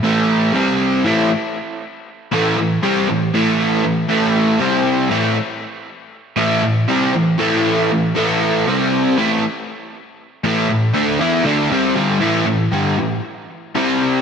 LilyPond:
\new Staff \with { instrumentName = "Overdriven electric guitar" } { \clef bass \time 4/4 \key a \minor \tempo 4 = 118 <a, e a>4 <c g c'>4 <a, e a>8 r4. | r8 <a, e a>8 <a, e>8 <c g c'>8 <a, e>8 <a, e a>4 <a, e>8 | <a, e a>4 <c g c'>4 <a, e a>8 r4. | r8 <a, e a>8 <a, e>8 <c g c'>8 <a, e>8 <a, e a>4 <a, e>8 |
<a, e a>4 <c g c'>4 <a, e a>8 r4. | r8 <a, e a>8 <a, e>8 <d a d'>8 <e b e'>8 <d a d'>8 <c g c'>8 <g, d g>8 | <a, e a>8 <a, e>8 <g, d g>8 <a, e>8 r4 <c g c'>4 | }